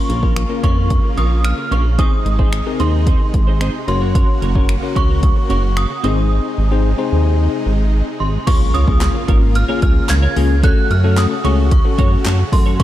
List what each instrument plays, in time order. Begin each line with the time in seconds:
Already playing: supersaw synth C#3 A#3 F4, synth bell C#6
0.09 analog synth bass A#1, clean electric guitar C#4 F4 A#4 C#5, closed hi-hat
0.22 tine electric piano A#3 C#4 F4 A#4, clean electric guitar C#4 F4 A#4 C#5, kick
0.36 finger snap, muted clean electric guitar stroke, closed hi-hat
0.50 tine electric piano A#3 C#4 F4 A#4, muted clean electric guitar stroke
0.63 analog synth bass F2, clean electric guitar C#4 F4 A#4 C#5, synth bell C#6, kick, closed hi-hat
0.76 clean electric guitar C#4 F4 A#4 C#5
0.90 muted clean electric guitar stroke, kick, closed hi-hat
1.04 muted clean electric guitar stroke
1.17 analog synth bass A#1, clean electric guitar C#4 F4 A#4 C#5, synth bell D#6, closed hi-hat
1.31 muted clean electric guitar stroke
1.45 synth bell F6, finger snap, closed hi-hat
1.58 muted clean electric guitar stroke
1.71 analog synth bass A#1, clean electric guitar C#4 F4 A#4 C#5, synth bell C#6, closed hi-hat
1.85 muted clean electric guitar stroke
1.98 supersaw synth C3 G#3 D#4, clean electric guitar C4 D#4 G#4 C5, tine electric piano C4 D#4 G#4 C5, synth bell D#6, kick, closed hi-hat
2.12 muted clean electric guitar stroke
2.25 analog synth bass G#1, muted clean electric guitar stroke, closed hi-hat
2.39 tine electric piano C4 D#4 G#4 D#5, clean electric guitar C4 D#4 G#4 C5, kick
2.52 finger snap, muted clean electric guitar stroke, closed hi-hat
2.66 tine electric piano C4 D#4 G#4 A#4, muted clean electric guitar stroke
2.80 analog synth bass D#2, clean electric guitar C4 D#4 G#4 C5, synth bell C6, closed hi-hat
2.93 clean electric guitar C4 D#4 G#4 C5
3.07 clean electric guitar C4 D#4 G#4 C5, kick, closed hi-hat
3.21 muted clean electric guitar stroke
3.34 analog synth bass G#1, muted clean electric guitar stroke, kick, closed hi-hat
3.47 clean electric guitar C4 D#4 G#4 C5
3.61 clean electric guitar C4 D#4 G#4 C5, finger snap, closed hi-hat
3.74 muted clean electric guitar stroke
3.88 analog synth bass F#1, supersaw synth C#3 A#3 F#4, tine electric piano C#4 F#4 A#4 C#5, synth bell C6, muted clean electric guitar stroke, closed hi-hat
4.01 clean electric guitar C#4 F#4 A#4 C#5
4.14 clean electric guitar C#4 F#4 A#4 C#5, kick, closed hi-hat
4.42 analog synth bass F#1, clean electric guitar C#4 F#4 A#4 C#5, closed hi-hat
4.55 tine electric piano C#4 F#4 A#4 C#5, clean electric guitar C#4 F#4 A#4 C#5, kick
4.69 finger snap, muted clean electric guitar stroke, closed hi-hat
4.82 tine electric piano C#4 F#4 A#4 C#5, muted clean electric guitar stroke
4.95 analog synth bass C#2, clean electric guitar C#4 F#4 A#4 C#5, synth bell C#6, kick, closed hi-hat
5.09 clean electric guitar C#4 F#4 A#4 C#5
5.23 kick, closed hi-hat
5.36 muted clean electric guitar stroke
5.50 analog synth bass F#1, clean electric guitar C#4 F#4 A#4 C#5, synth bell C#6, closed hi-hat
5.63 muted clean electric guitar stroke
5.77 synth bell D#6, finger snap, closed hi-hat
5.90 muted clean electric guitar stroke
6.03 analog synth bass G#1, supersaw synth C3 G#3 D#4, clean electric guitar C4 D#4 G#4 C5, tine electric piano C4 D#4 G#4 C5, synth bell D#6, closed hi-hat
6.17 muted clean electric guitar stroke
6.58 analog synth bass G#1
6.71 tine electric piano C4 D#4 G#4 C5
6.98 tine electric piano C4 D#4 G#4 C5
7.12 analog synth bass D#2
7.66 analog synth bass G#1
8.20 analog synth bass G#1, synth bell C6
8.47 supersaw synth C#3 A#3, tine electric piano A#3 C#4 F4 G#4, clean electric guitar C#4 F4 A#4 C#5, synth bell C#6, kick, closed hi-hat, crash, impact
8.61 muted clean electric guitar stroke
8.74 analog synth bass C#2, clean electric guitar C#4 F4 A#4 C#5, synth bell D#6, closed hi-hat
8.87 tine electric piano A#3 C#4 F4 G#4, clean electric guitar C#4 F4 A#4 C#5, kick
9.01 snare, clap, closed hi-hat
9.14 muted clean electric guitar stroke
9.28 analog synth bass G#1, tine electric piano A#3 C#4 F4 A#4, clean electric guitar C#4 F4 A#4 C#5, kick, closed hi-hat
9.42 muted clean electric guitar stroke
9.55 synth bell F6, muted clean electric guitar stroke, closed hi-hat
9.69 tine electric piano A#3 C#4 F4 G#4, clean electric guitar C#4 F4 A#4 C#5
9.82 analog synth bass C#2, clean electric guitar C#4 F4 A#4 C#5, synth bell F6, kick, closed hi-hat
9.96 muted clean electric guitar stroke
10.09 analog synth bass C#2, synth bell G#6, muted clean electric guitar stroke, snare, clap, closed hi-hat
10.22 clean electric guitar C#4 F4 A#4 C#5
10.36 analog synth bass C#2, tine electric piano A#3 C#4 F4 G#4, clean electric guitar C#4 F4 A#4 C#5, open hi-hat
10.50 muted clean electric guitar stroke
10.63 tine electric piano A3 C#4 F#4 A4, supersaw synth A3 F#4, clean electric guitar C#4 F#4 A4 C#5, synth bell F#6, kick, closed hi-hat
10.90 analog synth bass F#2, synth bell F6, muted clean electric guitar stroke, closed hi-hat
11.04 tine electric piano A3 C#4 F#4 A4, clean electric guitar C#4 F#4 A4 C#5
11.17 synth bell D#6, snare, clap, closed hi-hat
11.31 muted clean electric guitar stroke
11.44 analog synth bass C#2, tine electric piano A3 C#4 F#4 G#4, clean electric guitar C#4 F#4 A4 C#5, synth bell C#6, closed hi-hat
11.58 clean electric guitar C#4 F#4 A4 C#5
11.71 synth bell C#6, muted clean electric guitar stroke, kick, closed hi-hat
11.85 tine electric piano A3 C#4 F#4 A4, muted clean electric guitar stroke
11.98 analog synth bass F#2, clean electric guitar C#4 F#4 A4 C#5, kick, closed hi-hat
12.12 clean electric guitar C#4 F#4 A4 C#5
12.25 analog synth bass F#2, clean electric guitar C#4 F#4 A4 C#5, snare, clap, closed hi-hat
12.39 muted clean electric guitar stroke
12.52 analog synth bass F#2, tine electric piano A3 C#4 F#4 A4, synth bell C6, muted clean electric guitar stroke, kick, open hi-hat
12.66 clean electric guitar C#4 F#4 A4 C#5
12.79 clean electric guitar A#3 F4, tine electric piano A#3 C#4 F4 G#4, supersaw synth A#3, synth bell C#6, kick, closed hi-hat